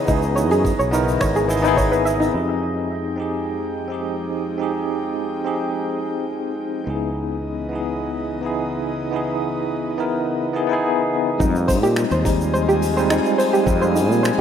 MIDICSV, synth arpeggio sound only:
0, 0, Header, 1, 2, 480
1, 0, Start_track
1, 0, Key_signature, -4, "minor"
1, 0, Tempo, 566038
1, 73, Time_signature, 4, 2, 24, 8
1, 12218, End_track
2, 0, Start_track
2, 0, Title_t, "Synth arpeggio sound"
2, 0, Program_c, 0, 84
2, 70, Note_on_c, 0, 63, 82
2, 140, Note_off_c, 0, 63, 0
2, 303, Note_on_c, 0, 73, 74
2, 422, Note_off_c, 0, 73, 0
2, 435, Note_on_c, 0, 68, 106
2, 498, Note_off_c, 0, 68, 0
2, 672, Note_on_c, 0, 73, 81
2, 778, Note_off_c, 0, 73, 0
2, 787, Note_on_c, 0, 63, 73
2, 858, Note_off_c, 0, 63, 0
2, 1025, Note_on_c, 0, 73, 87
2, 1143, Note_off_c, 0, 73, 0
2, 1153, Note_on_c, 0, 68, 97
2, 1217, Note_off_c, 0, 68, 0
2, 1388, Note_on_c, 0, 63, 100
2, 1496, Note_off_c, 0, 63, 0
2, 1500, Note_on_c, 0, 73, 81
2, 1620, Note_off_c, 0, 73, 0
2, 1626, Note_on_c, 0, 71, 72
2, 1694, Note_off_c, 0, 71, 0
2, 1741, Note_on_c, 0, 76, 77
2, 1866, Note_on_c, 0, 63, 97
2, 1867, Note_off_c, 0, 76, 0
2, 1974, Note_off_c, 0, 63, 0
2, 9663, Note_on_c, 0, 63, 88
2, 9736, Note_off_c, 0, 63, 0
2, 9903, Note_on_c, 0, 72, 76
2, 10022, Note_off_c, 0, 72, 0
2, 10033, Note_on_c, 0, 67, 109
2, 10097, Note_off_c, 0, 67, 0
2, 10276, Note_on_c, 0, 72, 80
2, 10380, Note_off_c, 0, 72, 0
2, 10387, Note_on_c, 0, 63, 78
2, 10458, Note_off_c, 0, 63, 0
2, 10630, Note_on_c, 0, 72, 88
2, 10745, Note_off_c, 0, 72, 0
2, 10757, Note_on_c, 0, 67, 98
2, 10819, Note_off_c, 0, 67, 0
2, 10998, Note_on_c, 0, 72, 79
2, 11100, Note_off_c, 0, 72, 0
2, 11113, Note_on_c, 0, 63, 85
2, 11181, Note_off_c, 0, 63, 0
2, 11348, Note_on_c, 0, 72, 83
2, 11465, Note_off_c, 0, 72, 0
2, 11475, Note_on_c, 0, 67, 100
2, 11538, Note_off_c, 0, 67, 0
2, 11717, Note_on_c, 0, 72, 77
2, 11820, Note_off_c, 0, 72, 0
2, 11830, Note_on_c, 0, 63, 72
2, 11900, Note_off_c, 0, 63, 0
2, 12067, Note_on_c, 0, 72, 77
2, 12184, Note_off_c, 0, 72, 0
2, 12218, End_track
0, 0, End_of_file